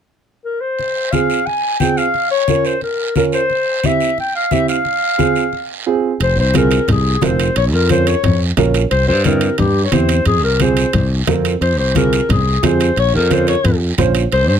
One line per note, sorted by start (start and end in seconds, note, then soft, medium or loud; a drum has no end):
0.45 0.62 A#4 medium
0.61 1.14 C5 medium
0.79 high conga soft
0.79 long guiro medium
1.12 1.37 C4 medium
1.12 1.37 F4 medium
1.12 1.37 G#4 medium
1.12 1.48 F5 medium
1.12 high conga medium
1.12 short guiro medium
1.30 short guiro medium
1.46 1.79 G#5 medium
1.46 high conga soft
1.46 long guiro medium
1.80 2.04 C4 medium
1.80 2.04 F4 medium
1.80 2.05 G#4 medium
1.80 1.99 G5 medium
1.80 high conga medium
1.80 short guiro medium
1.97 2.30 F5 medium
1.97 short guiro medium
2.14 high conga soft
2.14 long guiro medium
2.31 2.67 C#5 loud
2.48 2.72 C#4 medium
2.48 2.72 F4 medium
2.48 2.72 A#4 medium
2.48 high conga medium
2.48 short guiro medium
2.65 2.82 C5 medium
2.65 short guiro medium
2.81 3.14 A#4 medium
2.81 high conga soft
2.81 long guiro medium
3.15 3.40 C#4 medium
3.15 3.40 F4 medium
3.15 3.24 A#4 medium
3.15 3.40 A#4 medium
3.15 high conga medium
3.15 short guiro medium
3.32 3.87 C5 medium
3.32 short guiro medium
3.50 high conga soft
3.50 long guiro medium
3.83 4.07 C4 medium
3.83 4.08 E4 medium
3.83 4.08 G4 medium
3.83 4.19 E5 medium
3.83 high conga medium
3.83 short guiro medium
4.00 short guiro medium
4.18 4.34 G5 medium
4.18 high conga soft
4.18 long guiro medium
4.36 4.54 F5 medium
4.51 4.75 C4 medium
4.51 4.75 E4 medium
4.51 4.75 G4 medium
4.51 4.68 E5 medium
4.51 high conga medium
4.51 short guiro medium
4.68 5.83 F5 medium
4.68 short guiro medium
4.85 high conga soft
4.85 long guiro medium
5.18 5.42 C4 medium
5.18 5.42 F4 medium
5.18 5.43 G#4 medium
5.18 high conga medium
5.18 short guiro medium
5.36 short guiro medium
5.53 high conga soft
5.53 long guiro medium
5.86 6.10 C4 medium
5.86 6.10 F4 medium
5.86 6.10 G#4 medium
6.20 6.38 F1 medium
6.20 6.38 C5 medium
6.20 high conga soft
6.20 high timbale medium
6.20 long guiro medium
6.36 6.77 C2 medium
6.36 6.54 C5 medium
6.54 6.78 C4 medium
6.54 6.78 F4 medium
6.54 6.78 G#4 medium
6.54 6.87 A#4 medium
6.54 high conga medium
6.54 high timbale medium
6.54 short guiro medium
6.71 high timbale medium
6.71 short guiro medium
6.88 7.15 C2 medium
6.88 7.26 G#4 medium
6.88 high conga soft
6.88 low conga medium
6.88 high timbale medium
6.88 long guiro medium
7.21 7.49 F1 loud
7.21 7.46 C4 medium
7.21 7.46 F4 medium
7.21 7.46 A#4 medium
7.21 7.57 C5 medium
7.21 high conga medium
7.21 high timbale medium
7.21 low timbale medium
7.21 short guiro medium
7.39 high timbale medium
7.39 short guiro medium
7.56 7.73 A#1 medium
7.56 7.64 C#5 loud
7.56 high conga soft
7.56 high timbale medium
7.56 long guiro medium
7.73 8.13 F2 medium
7.73 7.89 A#4 medium
7.89 8.13 C#4 medium
7.89 8.14 F4 medium
7.89 8.14 A#4 medium
7.89 8.08 C5 medium
7.89 high conga medium
7.89 high timbale medium
7.89 short guiro medium
8.07 8.40 C#5 medium
8.07 high timbale medium
8.07 short guiro medium
8.23 8.50 F2 medium
8.23 high conga soft
8.23 low conga medium
8.23 high timbale medium
8.23 long guiro medium
8.57 8.84 A#1 loud
8.57 8.81 C#4 medium
8.57 8.81 F4 medium
8.57 8.81 A#4 medium
8.57 high conga medium
8.57 high timbale medium
8.57 low timbale medium
8.57 short guiro medium
8.74 high timbale medium
8.74 short guiro medium
8.91 9.09 C2 medium
8.91 9.07 C5 loud
8.91 high conga soft
8.91 high timbale medium
8.91 long guiro medium
9.08 9.48 G2 medium
9.08 9.24 C5 loud
9.24 9.49 C4 medium
9.24 9.49 E4 medium
9.24 9.49 G4 medium
9.24 9.57 A#4 medium
9.24 high conga medium
9.24 high timbale medium
9.24 short guiro medium
9.41 high timbale medium
9.41 short guiro medium
9.58 9.86 G2 medium
9.58 9.84 G4 medium
9.58 high conga soft
9.58 low conga medium
9.58 high timbale medium
9.58 long guiro medium
9.84 9.94 C#5 medium
9.92 10.19 E2 loud
9.92 10.16 C4 medium
9.92 10.16 E4 medium
9.92 10.16 G4 medium
9.92 10.26 C5 medium
9.92 high conga medium
9.92 high timbale medium
9.92 short guiro medium
10.09 high timbale medium
10.09 short guiro medium
10.26 10.43 F2 medium
10.26 10.42 G#4 loud
10.26 high conga soft
10.26 low conga medium
10.26 high timbale medium
10.26 long guiro medium
10.43 10.84 C2 medium
10.43 10.63 A#4 medium
10.60 10.84 C4 medium
10.60 10.84 F4 medium
10.60 10.84 G#4 medium
10.60 11.12 C5 medium
10.60 high conga medium
10.60 high timbale medium
10.60 short guiro medium
10.77 high timbale medium
10.77 short guiro medium
10.93 11.21 C2 medium
10.93 high conga soft
10.93 low conga medium
10.93 high timbale medium
10.93 long guiro medium
11.27 11.55 F2 medium
11.27 11.51 C4 medium
11.27 11.52 F4 medium
11.27 11.52 A#4 medium
11.27 high conga medium
11.27 high timbale medium
11.27 low timbale medium
11.27 short guiro medium
11.45 high timbale medium
11.45 short guiro medium
11.61 11.78 F2 medium
11.61 11.77 C5 loud
11.61 high conga soft
11.61 high timbale medium
11.61 long guiro medium
11.78 12.19 C2 medium
11.78 11.95 C5 medium
11.95 12.19 C4 medium
11.95 12.19 F4 medium
11.95 12.19 G#4 medium
11.95 12.27 A#4 medium
11.95 high conga medium
11.95 high timbale medium
11.95 short guiro medium
12.13 high timbale medium
12.13 short guiro medium
12.29 12.56 C2 medium
12.29 12.62 G#4 medium
12.29 high conga soft
12.29 low conga medium
12.29 high timbale medium
12.29 long guiro medium
12.63 12.90 F2 medium
12.63 12.87 C4 medium
12.63 12.87 F4 medium
12.63 12.87 G#4 medium
12.63 12.96 C5 medium
12.63 high conga medium
12.63 high timbale medium
12.63 low timbale medium
12.63 short guiro medium
12.80 high timbale medium
12.80 short guiro medium
12.96 13.15 A#1 medium
12.96 13.14 C#5 loud
12.96 high conga soft
12.96 high timbale medium
12.96 long guiro medium
13.13 13.54 F2 medium
13.13 13.34 A#4 medium
13.30 13.54 C#4 medium
13.30 13.54 F4 medium
13.30 13.54 A#4 medium
13.30 13.47 C5 medium
13.30 high conga medium
13.30 high timbale medium
13.30 short guiro medium
13.47 13.79 C#5 medium
13.47 high timbale medium
13.47 short guiro medium
13.64 13.91 F2 medium
13.64 high conga soft
13.64 low conga medium
13.64 high timbale medium
13.64 long guiro medium
13.98 14.25 A#1 medium
13.98 14.22 C#4 medium
13.98 14.22 F4 medium
13.98 14.22 C5 loud
13.98 high conga medium
13.98 low conga medium
13.98 high timbale medium
13.98 short guiro medium
14.15 high timbale medium
14.15 short guiro medium
14.32 14.49 C2 medium
14.32 14.48 C5 loud
14.32 high conga soft
14.32 high timbale medium
14.32 long guiro medium
14.49 14.60 G2 medium
14.49 14.56 C5 loud